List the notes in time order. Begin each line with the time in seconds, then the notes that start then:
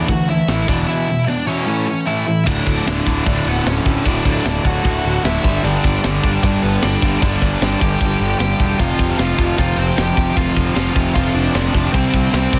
0.08 D2 A2 E3 F#4 F#5, kick, open hi-hat
0.28 A2 E3 E4 E5
0.48 A1 A2 E3 A3, snare, open hi-hat
0.68 E1 E2 B2 E3 D4 D5, kick
0.87 E2 B2 E3 E4 E5
1.08 E2 B2
1.27 E2 B2 D4 D5
1.47 E2 B2 E3 C#4 C#5
1.67 A2 E3 A3
1.86 A2 E3
2.06 A2 E3 A3 E4 E5
2.27 A2 E3
2.46 D1 D2 A2 D3 D4 D5, kick, crash
2.67 D1, kick
2.86 D1 D2 A2 D3 D4 D5, snare, crash
3.05 D1 D2 A2 D3, kick
3.25 D1 D2 A2 D3 D4 D5, kick, crash
3.46 D1 B3 B4
3.65 D1 D2 A2 D3 C#4 C#5, snare, crash
3.84 D1 D2 A2 D3, kick
4.05 D1 D2 A2 D3 D4 D5, kick, crash
4.25 D1 D4 D5, kick
4.45 D1 D2 A2 D3, snare, crash
4.64 D1 D2 A2 D3 F#4 F#5, kick
4.83 D1 D2 A2 D3, kick, crash
5.05 D1
5.24 D1 D2 A2 D3 E4 E5, snare, crash
5.44 G1 G2 D3 G3, kick
5.63 G1 G2 D3 G3 D4 D5, crash
5.84 G1, kick
6.03 G1 G2 D3 G3 D4 D5, snare, crash
6.23 G1 G2 D3 G3, kick
6.43 G1 G2 D3 G3 D4 D5, kick, crash
6.63 G1 B3 B4
6.82 G1 G2 D3 G3 D4 D5, snare, crash
7.02 G1 G2 D3 G3, kick
7.22 G1 G2 D3 G3 D4 D5, kick, crash
7.42 G1 D4 D5, kick
7.61 G1 G2 D3 G3, snare, crash
7.81 G1 G2 D3 G3 G4 G5, kick
8.01 G1 G2 D3 G3, kick, crash
8.20 G1
8.39 G1 G2 D3 G3 G4 G5, snare, crash
8.60 E1 G2 D3 G3, kick
8.79 F1 F2 C3 F3 F4 F5, kick, crash
8.99 F1, kick
9.18 F1 F2 C3 F3 F4 F5, snare, crash
9.37 F1 F2 C3 F3, kick
9.58 F1 F2 C3 F3 F4 F5, kick, crash
9.77 F1 C4 C5
9.96 F1 F2 C3 F3 G4 G5, snare, crash
10.16 F1 F2 C3 F3, kick
10.35 F1 F2 C3 F3 F4 F5, kick, crash
10.57 F1, kick
10.75 F1 F2 C3 F3 F4 F5, snare, crash
10.94 F1 F2 C3 F3, kick
11.14 F1 F2 C3 F3 F4 F5, kick, crash
11.34 F1 D4 D5
11.54 F1 F2 C3 F3 D4 D5, snare, crash
11.74 F1 F2 C3 F3, kick
11.93 C2 C3 G3 C4 C5, kick, crash
12.14 C2, kick
12.31 C2 C3 G3 C4 C5, snare, crash
12.53 C2 C3 G3 C4, kick